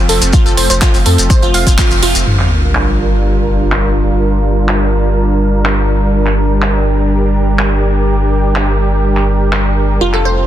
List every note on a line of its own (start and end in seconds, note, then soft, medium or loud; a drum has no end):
0.00 2.23 F3 medium
0.00 2.23 A3 medium
0.00 2.23 C4 medium
0.09 0.20 F1 loud
0.09 0.12 A4 medium
0.09 open hi-hat loud
0.22 0.31 F1 medium
0.22 closed hi-hat medium
0.22 maracas medium
0.33 0.38 F4 medium
0.33 kick loud
0.33 closed hi-hat medium
0.33 maracas medium
0.46 0.55 F1 medium
0.46 0.50 A4 medium
0.46 closed hi-hat soft
0.46 maracas soft
0.57 0.68 F1 loud
0.57 0.64 C5 medium
0.57 open hi-hat loud
0.70 0.80 F1 medium
0.70 0.74 C5 medium
0.70 closed hi-hat medium
0.70 maracas medium
0.82 0.86 F4 medium
0.82 kick loud
0.82 clap loud
0.82 closed hi-hat medium
0.82 maracas medium
0.94 1.04 F1 medium
0.94 open hi-hat medium
0.94 maracas soft
1.06 1.16 F2 loud
1.06 1.09 A4 medium
1.06 open hi-hat loud
1.18 1.28 F1 medium
1.18 closed hi-hat medium
1.18 maracas medium
1.30 1.34 C5 medium
1.30 kick loud
1.30 closed hi-hat medium
1.30 maracas medium
1.42 1.52 F1 medium
1.42 1.47 F4 medium
1.42 closed hi-hat soft
1.42 maracas soft
1.54 1.65 F1 loud
1.54 1.59 F5 medium
1.54 open hi-hat loud
1.67 1.76 F1 medium
1.67 1.71 F4 medium
1.67 kick medium
1.67 closed hi-hat medium
1.67 maracas medium
1.78 1.85 F4 medium
1.78 kick loud
1.78 clap loud
1.78 closed hi-hat medium
1.78 maracas medium
1.91 2.01 F1 medium
1.91 closed hi-hat soft
1.91 maracas soft
2.03 2.13 F1 loud
2.03 2.09 F4 medium
2.03 open hi-hat loud
2.15 2.25 F1 medium
2.15 closed hi-hat medium
2.15 maracas medium
2.27 9.99 G1 medium
2.27 9.97 G3 medium
2.27 9.97 D4 medium
2.27 6.10 F4 medium
2.27 9.97 A#4 medium
2.27 sub drop medium
2.39 clap soft
2.75 clap loud
3.72 clap loud
4.69 clap loud
5.65 clap loud
6.14 9.97 G4 medium
6.26 clap soft
6.62 clap loud
7.59 clap loud
8.56 clap loud
9.17 clap soft
9.53 clap loud
10.01 10.47 F1 medium
10.01 10.47 A3 medium
10.01 10.47 C4 medium
10.01 10.47 F4 medium
10.01 10.05 F4 medium
10.14 10.18 A4 medium
10.14 clap soft
10.25 10.32 C5 medium